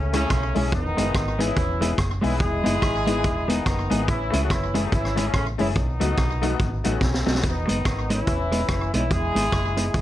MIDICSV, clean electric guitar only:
0, 0, Header, 1, 2, 480
1, 0, Start_track
1, 0, Key_signature, 4, "major"
1, 0, Tempo, 418994
1, 829, Time_signature, 4, 2, 24, 8
1, 11472, End_track
2, 0, Start_track
2, 0, Title_t, "Clean electric guitar"
2, 0, Program_c, 0, 27
2, 158, Note_on_c, 0, 56, 81
2, 167, Note_on_c, 0, 61, 89
2, 174, Note_on_c, 0, 64, 86
2, 255, Note_off_c, 0, 56, 0
2, 260, Note_off_c, 0, 61, 0
2, 263, Note_off_c, 0, 64, 0
2, 638, Note_on_c, 0, 56, 85
2, 651, Note_on_c, 0, 64, 91
2, 652, Note_on_c, 0, 61, 92
2, 736, Note_off_c, 0, 56, 0
2, 742, Note_off_c, 0, 61, 0
2, 742, Note_off_c, 0, 64, 0
2, 1112, Note_on_c, 0, 56, 78
2, 1116, Note_on_c, 0, 59, 84
2, 1122, Note_on_c, 0, 63, 90
2, 1213, Note_off_c, 0, 56, 0
2, 1215, Note_off_c, 0, 59, 0
2, 1218, Note_off_c, 0, 63, 0
2, 1588, Note_on_c, 0, 56, 82
2, 1593, Note_on_c, 0, 59, 83
2, 1606, Note_on_c, 0, 63, 89
2, 1692, Note_off_c, 0, 56, 0
2, 1694, Note_off_c, 0, 59, 0
2, 1701, Note_off_c, 0, 63, 0
2, 2074, Note_on_c, 0, 56, 79
2, 2083, Note_on_c, 0, 59, 92
2, 2091, Note_on_c, 0, 63, 86
2, 2175, Note_off_c, 0, 56, 0
2, 2180, Note_off_c, 0, 59, 0
2, 2183, Note_off_c, 0, 63, 0
2, 2537, Note_on_c, 0, 56, 82
2, 2550, Note_on_c, 0, 59, 77
2, 2554, Note_on_c, 0, 63, 93
2, 2647, Note_off_c, 0, 56, 0
2, 2653, Note_off_c, 0, 59, 0
2, 2655, Note_off_c, 0, 63, 0
2, 3021, Note_on_c, 0, 56, 86
2, 3026, Note_on_c, 0, 59, 86
2, 3034, Note_on_c, 0, 63, 98
2, 3129, Note_off_c, 0, 56, 0
2, 3132, Note_off_c, 0, 59, 0
2, 3136, Note_off_c, 0, 63, 0
2, 3511, Note_on_c, 0, 56, 73
2, 3523, Note_on_c, 0, 59, 81
2, 3528, Note_on_c, 0, 63, 89
2, 3614, Note_off_c, 0, 56, 0
2, 3621, Note_off_c, 0, 59, 0
2, 3623, Note_off_c, 0, 63, 0
2, 3987, Note_on_c, 0, 56, 86
2, 3996, Note_on_c, 0, 59, 85
2, 4002, Note_on_c, 0, 63, 101
2, 4093, Note_off_c, 0, 56, 0
2, 4097, Note_off_c, 0, 59, 0
2, 4100, Note_off_c, 0, 63, 0
2, 4474, Note_on_c, 0, 56, 90
2, 4485, Note_on_c, 0, 59, 93
2, 4488, Note_on_c, 0, 63, 89
2, 4576, Note_off_c, 0, 56, 0
2, 4582, Note_off_c, 0, 59, 0
2, 4583, Note_off_c, 0, 63, 0
2, 4964, Note_on_c, 0, 56, 88
2, 4967, Note_on_c, 0, 61, 96
2, 4974, Note_on_c, 0, 64, 99
2, 5061, Note_off_c, 0, 56, 0
2, 5063, Note_off_c, 0, 61, 0
2, 5067, Note_off_c, 0, 64, 0
2, 5434, Note_on_c, 0, 56, 99
2, 5439, Note_on_c, 0, 61, 88
2, 5448, Note_on_c, 0, 64, 94
2, 5536, Note_off_c, 0, 56, 0
2, 5539, Note_off_c, 0, 61, 0
2, 5544, Note_off_c, 0, 64, 0
2, 5926, Note_on_c, 0, 56, 86
2, 5935, Note_on_c, 0, 61, 93
2, 5941, Note_on_c, 0, 64, 97
2, 6023, Note_off_c, 0, 56, 0
2, 6027, Note_off_c, 0, 61, 0
2, 6030, Note_off_c, 0, 64, 0
2, 6419, Note_on_c, 0, 56, 77
2, 6422, Note_on_c, 0, 61, 78
2, 6429, Note_on_c, 0, 64, 92
2, 6509, Note_off_c, 0, 56, 0
2, 6511, Note_off_c, 0, 61, 0
2, 6514, Note_off_c, 0, 64, 0
2, 6881, Note_on_c, 0, 54, 78
2, 6883, Note_on_c, 0, 57, 85
2, 6890, Note_on_c, 0, 63, 87
2, 6980, Note_off_c, 0, 54, 0
2, 6981, Note_off_c, 0, 57, 0
2, 6985, Note_off_c, 0, 63, 0
2, 7363, Note_on_c, 0, 54, 89
2, 7368, Note_on_c, 0, 57, 82
2, 7376, Note_on_c, 0, 63, 106
2, 7461, Note_off_c, 0, 54, 0
2, 7463, Note_off_c, 0, 57, 0
2, 7467, Note_off_c, 0, 63, 0
2, 7849, Note_on_c, 0, 54, 76
2, 7853, Note_on_c, 0, 57, 82
2, 7859, Note_on_c, 0, 63, 86
2, 7944, Note_off_c, 0, 54, 0
2, 7945, Note_off_c, 0, 57, 0
2, 7949, Note_off_c, 0, 63, 0
2, 8323, Note_on_c, 0, 54, 88
2, 8329, Note_on_c, 0, 57, 82
2, 8339, Note_on_c, 0, 63, 97
2, 8421, Note_off_c, 0, 54, 0
2, 8424, Note_off_c, 0, 57, 0
2, 8428, Note_off_c, 0, 63, 0
2, 8792, Note_on_c, 0, 56, 80
2, 8804, Note_on_c, 0, 59, 86
2, 8809, Note_on_c, 0, 63, 96
2, 8895, Note_off_c, 0, 56, 0
2, 8901, Note_off_c, 0, 59, 0
2, 8903, Note_off_c, 0, 63, 0
2, 9279, Note_on_c, 0, 56, 85
2, 9285, Note_on_c, 0, 59, 88
2, 9285, Note_on_c, 0, 63, 91
2, 9378, Note_off_c, 0, 56, 0
2, 9381, Note_off_c, 0, 59, 0
2, 9381, Note_off_c, 0, 63, 0
2, 9757, Note_on_c, 0, 56, 79
2, 9761, Note_on_c, 0, 59, 89
2, 9772, Note_on_c, 0, 63, 87
2, 9857, Note_off_c, 0, 56, 0
2, 9858, Note_off_c, 0, 59, 0
2, 9864, Note_off_c, 0, 63, 0
2, 10238, Note_on_c, 0, 56, 81
2, 10247, Note_on_c, 0, 59, 83
2, 10257, Note_on_c, 0, 63, 99
2, 10337, Note_off_c, 0, 56, 0
2, 10341, Note_off_c, 0, 59, 0
2, 10346, Note_off_c, 0, 63, 0
2, 10714, Note_on_c, 0, 56, 79
2, 10720, Note_on_c, 0, 59, 77
2, 10726, Note_on_c, 0, 63, 86
2, 10814, Note_off_c, 0, 56, 0
2, 10817, Note_off_c, 0, 59, 0
2, 10820, Note_off_c, 0, 63, 0
2, 11191, Note_on_c, 0, 56, 80
2, 11196, Note_on_c, 0, 59, 81
2, 11200, Note_on_c, 0, 63, 88
2, 11292, Note_off_c, 0, 56, 0
2, 11295, Note_off_c, 0, 59, 0
2, 11297, Note_off_c, 0, 63, 0
2, 11472, End_track
0, 0, End_of_file